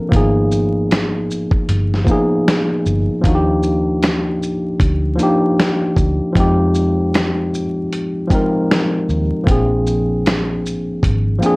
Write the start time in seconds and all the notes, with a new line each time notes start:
Already playing: F3 A#3 C4 D4 A4 A#4
0.09 G#1 F3 A#3 B3, kick
0.13 D#4 G#4, closed hi-hat
0.52 shaker
0.91 finger snap, snare, closed hi-hat
1.31 shaker
1.51 kick
1.69 G1, closed hi-hat
1.94 snare
2.04 F3 A#3 B3, kick, shaker
2.10 D#4 G#4
2.48 finger snap, snare, closed hi-hat
2.86 G1, shaker
3.21 D#2 F3 A#3 D4, kick, closed hi-hat
3.27 D#4 F#4
3.35 G4
3.63 shaker
4.03 finger snap, snare, closed hi-hat
4.43 shaker
4.80 D2, kick, closed hi-hat
5.16 F3 A#3 D4, closed hi-hat, shaker
5.21 D#4 G4
5.60 finger snap, snare, closed hi-hat
5.97 D2, kick, shaker
6.33 F2 F3 G#3 C4, kick, closed hi-hat
6.38 D#4 G4
6.75 shaker
7.14 finger snap, snare, closed hi-hat
7.55 shaker
7.92 D#2, closed hi-hat
8.28 F3 G#3 C4, kick, closed hi-hat, shaker
8.33 D#4 A#4
8.71 finger snap, snare, closed hi-hat
9.09 D#2, shaker
9.44 A#1 F3 A#3 C4, kick
9.48 D4 G#4, closed hi-hat
9.87 shaker
10.26 finger snap, snare, closed hi-hat
10.66 shaker
11.03 G#1, kick, closed hi-hat
11.39 F3 A#3 C4
11.43 D4 G#4, closed hi-hat, shaker